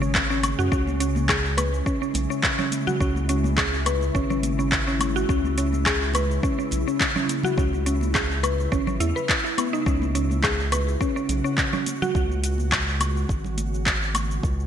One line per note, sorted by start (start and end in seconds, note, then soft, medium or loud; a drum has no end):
0.00 0.54 G#1 loud
0.00 14.43 C#3 medium
0.00 14.43 G#3 medium
0.00 1.43 C#4 medium
0.00 0.14 C#4 medium
0.00 shaker soft
0.15 kick loud
0.15 clap loud
0.15 shaker soft
0.30 0.43 C#4 medium
0.30 shaker soft
0.43 closed hi-hat medium
0.43 high conga medium
0.43 low woodblock medium
0.43 shaker medium
0.59 0.69 F#2 medium
0.59 0.71 F#4 loud
0.59 shaker soft
0.72 1.82 C#2 loud
0.72 0.87 C#4 loud
0.72 kick loud
0.72 shaker soft
0.87 high conga medium
0.87 shaker soft
1.00 1.09 C#4 medium
1.00 closed hi-hat medium
1.00 shaker medium
1.16 high conga medium
1.16 shaker soft
1.29 1.44 G#4 medium
1.29 kick loud
1.29 clap loud
1.29 low woodblock medium
1.29 shaker soft
1.39 10.57 E4 medium
1.46 shaker soft
1.57 1.72 B4 medium
1.57 closed hi-hat loud
1.57 muted conga medium
1.57 low woodblock medium
1.57 shaker medium
1.74 shaker soft
1.86 2.01 C#4 medium
1.86 kick loud
1.86 shaker soft
2.02 2.09 C#4 medium
2.02 shaker soft
2.14 2.27 B1 medium
2.14 closed hi-hat medium
2.14 muted conga medium
2.14 shaker medium
2.30 2.43 C#4 medium
2.30 shaker soft
2.43 kick loud
2.43 clap loud
2.43 shaker soft
2.59 2.71 C#4 medium
2.59 low conga loud
2.59 shaker soft
2.72 closed hi-hat medium
2.72 high conga medium
2.72 shaker medium
2.87 3.00 F#4 loud
2.87 low conga medium
2.87 shaker soft
3.00 4.11 C#2 loud
3.00 3.15 C#4 medium
3.00 kick loud
3.00 shaker soft
3.16 high conga medium
3.16 shaker soft
3.29 3.38 C#4 medium
3.29 closed hi-hat medium
3.29 shaker medium
3.44 high conga medium
3.44 shaker soft
3.58 3.72 G#4 medium
3.58 kick loud
3.58 clap loud
3.58 low woodblock medium
3.58 shaker soft
3.74 shaker soft
3.86 4.01 B4 medium
3.86 closed hi-hat medium
3.86 muted conga medium
3.86 low woodblock medium
3.86 shaker medium
4.01 muted conga soft
4.01 shaker soft
4.15 5.25 G#1 medium
4.15 4.29 C#4 loud
4.15 kick loud
4.15 shaker soft
4.30 4.38 C#4 medium
4.30 low conga medium
4.30 shaker soft
4.43 closed hi-hat medium
4.43 high conga medium
4.43 shaker medium
4.59 4.71 C#4 medium
4.59 shaker soft
4.72 kick loud
4.72 clap loud
4.72 shaker soft
4.87 5.00 C#4 medium
4.87 shaker soft
5.00 closed hi-hat medium
5.00 high conga medium
5.00 low woodblock medium
5.00 shaker medium
5.16 5.28 F#4 loud
5.16 shaker soft
5.29 6.39 C#2 loud
5.29 5.44 C#4 medium
5.29 kick loud
5.29 shaker soft
5.44 high conga medium
5.44 shaker soft
5.58 5.67 C#4 medium
5.58 closed hi-hat medium
5.58 shaker medium
5.73 high conga medium
5.73 shaker soft
5.86 6.01 G#4 medium
5.86 kick loud
5.86 clap loud
5.86 low woodblock medium
5.86 shaker soft
6.03 shaker soft
6.14 6.29 B4 medium
6.14 closed hi-hat medium
6.14 muted conga medium
6.14 low woodblock medium
6.14 shaker medium
6.31 shaker soft
6.43 6.57 C#4 loud
6.43 kick loud
6.43 shaker soft
6.59 6.66 C#4 medium
6.59 shaker soft
6.71 6.85 B1 medium
6.71 closed hi-hat medium
6.71 muted conga medium
6.71 shaker medium
6.88 7.00 C#4 medium
6.88 shaker soft
7.00 kick loud
7.00 clap loud
7.00 shaker soft
7.16 7.28 C#4 medium
7.16 low conga loud
7.16 shaker soft
7.28 closed hi-hat medium
7.28 high conga medium
7.28 shaker medium
7.43 7.57 F#4 loud
7.43 low conga loud
7.43 shaker soft
7.58 8.68 C#2 loud
7.58 7.72 C#4 medium
7.58 kick loud
7.58 shaker soft
7.73 high conga medium
7.73 shaker soft
7.86 7.95 C#4 medium
7.86 closed hi-hat medium
7.86 shaker medium
8.01 high conga medium
8.01 shaker soft
8.15 8.30 G#4 medium
8.15 kick loud
8.15 clap medium
8.15 low woodblock medium
8.15 shaker soft
8.31 shaker soft
8.43 8.58 B4 medium
8.43 closed hi-hat medium
8.43 muted conga medium
8.43 low woodblock medium
8.43 shaker medium
8.58 muted conga soft
8.58 shaker soft
8.72 9.00 G#1 medium
8.72 8.86 C#4 loud
8.72 kick loud
8.72 shaker soft
8.87 8.95 C#4 medium
8.87 low conga loud
8.87 shaker soft
9.00 9.13 E2 loud
9.00 9.15 E4 loud
9.00 closed hi-hat medium
9.00 high conga medium
9.00 shaker medium
9.16 9.28 B4 medium
9.16 shaker soft
9.29 kick loud
9.29 clap loud
9.29 shaker soft
9.44 9.57 E4 medium
9.44 shaker soft
9.58 9.72 B3 medium
9.58 closed hi-hat medium
9.58 high conga medium
9.58 low woodblock medium
9.58 shaker medium
9.73 9.85 D#4 loud
9.73 shaker soft
9.86 10.96 C#2 loud
9.86 10.01 C#4 loud
9.86 kick loud
9.86 shaker soft
10.02 high conga medium
10.02 shaker soft
10.15 10.24 C#4 medium
10.15 closed hi-hat medium
10.15 shaker medium
10.31 high conga medium
10.31 shaker soft
10.43 10.58 G#4 medium
10.43 kick loud
10.43 clap medium
10.43 low woodblock medium
10.43 shaker soft
10.54 14.47 F#4 medium
10.60 shaker soft
10.72 10.87 B4 medium
10.72 closed hi-hat medium
10.72 muted conga medium
10.72 low woodblock medium
10.72 shaker medium
10.88 shaker soft
11.01 11.15 C#4 loud
11.01 kick loud
11.01 shaker soft
11.16 11.24 C#4 medium
11.16 shaker soft
11.29 11.42 B1 medium
11.29 closed hi-hat medium
11.29 muted conga medium
11.29 shaker medium
11.44 11.57 C#4 medium
11.44 shaker soft
11.58 kick loud
11.58 clap medium
11.58 shaker soft
11.73 11.86 C#4 medium
11.73 low conga loud
11.73 shaker soft
11.86 closed hi-hat medium
11.86 high conga medium
11.86 shaker medium
12.02 12.14 F#4 loud
12.02 low conga medium
12.02 shaker soft
12.15 13.25 C#2 loud
12.15 kick loud
12.15 shaker soft
12.30 high conga medium
12.30 shaker soft
12.44 closed hi-hat medium
12.44 shaker medium
12.58 high conga medium
12.58 shaker soft
12.72 kick medium
12.72 clap medium
12.72 low woodblock medium
12.72 shaker soft
12.88 shaker soft
13.00 closed hi-hat medium
13.00 muted conga medium
13.00 low woodblock medium
13.00 shaker medium
13.15 muted conga soft
13.15 shaker soft
13.29 14.39 G#1 medium
13.29 kick loud
13.29 shaker soft
13.44 low conga medium
13.44 shaker soft
13.58 closed hi-hat medium
13.58 high conga medium
13.58 shaker medium
13.74 shaker soft
13.86 kick medium
13.86 clap loud
13.86 shaker soft
14.03 shaker soft
14.14 closed hi-hat medium
14.14 high conga medium
14.14 low woodblock medium
14.14 shaker medium
14.31 shaker soft
14.43 14.67 C#2 loud
14.43 kick loud
14.43 shaker soft
14.60 shaker soft